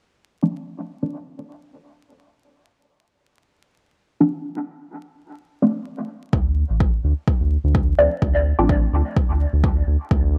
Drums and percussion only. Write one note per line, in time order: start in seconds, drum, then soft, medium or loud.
6.33 kick loud
6.80 kick loud
7.28 kick loud
7.75 kick loud
8.22 kick loud
8.69 kick loud
9.17 kick loud
9.64 kick loud
10.11 kick loud